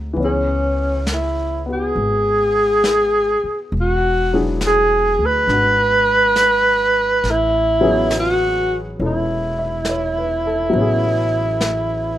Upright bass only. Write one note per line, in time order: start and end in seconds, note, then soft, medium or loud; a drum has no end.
0.00 0.13 D2 medium
0.16 1.91 C#2 medium
1.96 3.39 G#1 medium
3.44 muted upright bass stroke soft
3.72 5.15 E1 medium
5.19 5.46 D2 medium
5.47 7.19 G#1 medium
7.23 8.94 A1 medium
9.00 10.71 E1 medium
10.73 12.18 A1 medium